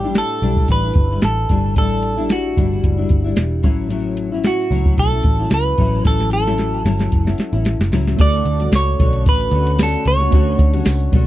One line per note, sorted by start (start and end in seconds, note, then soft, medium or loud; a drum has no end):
0.00 0.21 A1 medium
0.00 0.42 E4 medium
0.00 0.18 G4 medium
0.04 0.41 A2 soft
0.04 0.42 G3 medium
0.04 0.42 D4 medium
0.15 0.71 A4 medium
0.15 snare medium
0.15 closed hi-hat medium
0.42 0.64 B1 medium
0.42 0.84 A2 medium
0.42 0.84 G3 medium
0.42 0.84 D4 medium
0.42 0.83 E4 medium
0.42 closed hi-hat medium
0.56 kick medium
0.68 0.90 A1 medium
0.68 1.20 B4 medium
0.68 kick medium
0.68 closed hi-hat medium
0.84 1.12 G3 soft
0.84 1.11 D4 soft
0.84 1.09 E4 soft
0.94 1.17 G1 medium
0.94 kick loud
0.94 closed hi-hat medium
1.10 1.49 G3 soft
1.10 1.49 D4 soft
1.10 1.49 E4 soft
1.22 1.44 A1 loud
1.22 1.77 A4 medium
1.22 snare loud
1.22 closed hi-hat medium
1.49 1.76 G1 medium
1.49 1.74 A2 medium
1.49 1.76 G3 medium
1.49 1.76 D4 medium
1.49 1.77 E4 medium
1.49 kick medium
1.49 closed hi-hat medium
1.76 2.53 A1 medium
1.76 2.18 A2 medium
1.76 2.17 G3 medium
1.76 2.16 D4 medium
1.76 2.16 E4 medium
1.76 2.32 A4 medium
1.76 kick medium
1.76 closed hi-hat medium
2.03 closed hi-hat medium
2.17 2.55 A2 soft
2.17 2.56 G3 medium
2.17 2.57 D4 medium
2.17 2.56 E4 medium
2.29 3.34 F#4 medium
2.29 snare medium
2.29 closed hi-hat medium
2.57 2.78 G1 medium
2.57 2.98 A2 medium
2.57 2.99 G3 medium
2.57 2.97 D4 medium
2.57 2.96 E4 medium
2.57 kick medium
2.57 closed hi-hat medium
2.83 3.05 F#1 medium
2.83 kick medium
2.83 closed hi-hat medium
2.97 3.26 G3 soft
2.97 3.24 D4 medium
2.97 3.23 E4 soft
3.09 3.32 G1 medium
3.09 kick medium
3.09 closed hi-hat medium
3.24 3.63 G3 soft
3.24 3.64 D4 medium
3.24 3.63 E4 medium
3.36 3.64 E1 loud
3.36 snare loud
3.36 closed hi-hat medium
3.63 4.50 A1 medium
3.63 3.88 A2 medium
3.63 3.89 F#3 medium
3.63 3.90 C#4 medium
3.63 3.90 E4 medium
3.63 kick loud
3.63 closed hi-hat medium
3.89 4.31 A2 medium
3.89 4.32 F#3 medium
3.89 4.31 C#4 medium
3.89 4.30 E4 medium
3.89 closed hi-hat medium
4.17 closed hi-hat medium
4.32 4.69 A2 soft
4.32 4.70 F#3 medium
4.32 4.71 C#4 medium
4.32 4.71 E4 medium
4.44 4.96 F#4 medium
4.44 snare medium
4.44 closed hi-hat medium
4.71 4.92 C#2 medium
4.71 5.12 A2 medium
4.71 5.13 F#3 medium
4.71 5.13 C#4 medium
4.71 5.11 E4 medium
4.71 closed hi-hat medium
4.85 kick medium
4.98 5.19 B1 medium
4.98 5.49 A4 medium
4.98 kick medium
4.98 closed hi-hat medium
5.12 5.41 F#3 soft
5.12 5.39 C#4 soft
5.12 5.38 E4 soft
5.23 5.46 A1 medium
5.23 kick loud
5.23 closed hi-hat medium
5.39 5.77 F#3 soft
5.39 5.78 C#4 soft
5.39 5.78 E4 soft
5.50 5.72 C#2 medium
5.50 6.06 B4 medium
5.50 snare loud
5.50 closed hi-hat medium
5.78 6.00 A1 medium
5.78 6.03 A2 medium
5.78 6.04 F#3 medium
5.78 6.05 C#4 medium
5.78 6.06 E4 medium
5.78 kick medium
5.78 closed hi-hat medium
6.05 6.81 A1 medium
6.05 6.46 A2 medium
6.05 6.47 F#3 medium
6.05 6.46 C#4 medium
6.05 6.45 E4 medium
6.05 6.32 A4 medium
6.05 kick medium
6.05 snare soft
6.05 closed hi-hat medium
6.20 snare soft
6.31 7.89 A4 medium
6.31 closed hi-hat medium
6.46 6.83 A2 medium
6.46 6.84 F#3 medium
6.46 6.85 C#4 medium
6.46 6.85 E4 medium
6.46 snare soft
6.58 snare medium
6.58 closed hi-hat medium
6.84 7.07 G1 medium
6.84 7.26 A2 medium
6.84 7.27 F#3 medium
6.84 7.26 C#4 medium
6.84 7.25 E4 medium
6.84 snare medium
6.84 closed hi-hat medium
6.99 snare medium
6.99 closed hi-hat soft
7.12 7.33 F#1 medium
7.12 kick medium
7.12 closed hi-hat medium
7.26 7.54 F#3 soft
7.26 7.53 C#4 soft
7.26 7.51 E4 soft
7.26 snare medium
7.38 muted picked electric bass stroke soft
7.38 snare medium
7.38 closed hi-hat medium
7.52 7.74 A1 medium
7.52 7.92 F#3 soft
7.52 7.92 C#4 soft
7.52 7.92 E4 medium
7.52 closed hi-hat soft
7.65 snare medium
7.65 closed hi-hat medium
7.79 7.89 F#1 medium
7.79 snare medium
7.92 8.14 C#2 medium
7.92 8.19 A2 medium
7.92 8.19 F#3 medium
7.92 8.19 C#4 medium
7.92 8.20 E4 medium
7.92 snare medium
7.92 closed hi-hat medium
8.07 snare medium
8.17 8.40 D2 medium
8.17 8.60 D3 medium
8.17 10.28 A3 medium
8.17 8.61 A3 medium
8.17 10.28 D4 medium
8.17 10.29 F#4 medium
8.17 8.59 F#4 medium
8.17 kick loud
8.17 closed hi-hat medium
8.21 10.30 A4 medium
8.21 8.75 D5 loud
8.45 8.67 D2 medium
8.45 closed hi-hat medium
8.60 8.99 A3 soft
8.60 9.00 C#4 medium
8.60 8.99 F#4 medium
8.60 closed hi-hat medium
8.72 8.94 C#2 loud
8.72 9.24 C#5 loud
8.72 snare medium
8.72 closed hi-hat medium
8.72 tambourine medium
8.86 closed hi-hat soft
8.99 9.26 B1 medium
8.99 9.51 D3 medium
8.99 9.52 A3 medium
8.99 9.53 C#4 medium
8.99 9.54 F#4 medium
8.99 kick medium
8.99 closed hi-hat medium
9.13 closed hi-hat medium
9.26 9.47 A1 medium
9.26 9.82 B4 medium
9.26 kick medium
9.26 closed hi-hat medium
9.41 closed hi-hat soft
9.51 9.95 D2 medium
9.51 9.78 D3 medium
9.51 9.79 A3 medium
9.51 9.80 C#4 medium
9.51 9.80 F#4 medium
9.51 closed hi-hat medium
9.67 closed hi-hat medium
9.79 10.20 D3 medium
9.79 10.21 A3 medium
9.79 10.20 C#4 medium
9.79 10.19 F#4 medium
9.79 snare loud
9.79 closed hi-hat loud
9.79 tambourine medium
9.83 10.06 A4 medium
10.05 10.27 C#2 medium
10.05 11.27 C#5 medium
10.05 closed hi-hat medium
10.20 10.32 A3 soft
10.20 10.32 C#4 soft
10.20 10.32 F#4 soft
10.20 closed hi-hat soft
10.30 10.54 D2 medium
10.30 10.74 D3 medium
10.30 11.27 A3 medium
10.30 10.74 A3 medium
10.30 10.74 C#4 medium
10.30 11.27 D4 medium
10.30 11.27 F#4 medium
10.30 10.73 F#4 loud
10.30 kick loud
10.30 closed hi-hat medium
10.35 11.27 C#5 medium
10.59 10.80 D2 medium
10.59 kick medium
10.59 closed hi-hat medium
10.74 11.12 A3 soft
10.74 11.13 C#4 medium
10.74 11.13 F#4 medium
10.74 closed hi-hat medium
10.85 11.07 C#2 medium
10.85 snare loud
10.85 closed hi-hat medium
10.85 tambourine medium
10.99 closed hi-hat soft
11.12 11.27 B1 medium
11.12 11.27 D3 medium
11.12 11.27 A3 medium
11.12 11.27 C#4 medium
11.12 11.27 F#4 medium
11.12 kick medium
11.12 closed hi-hat medium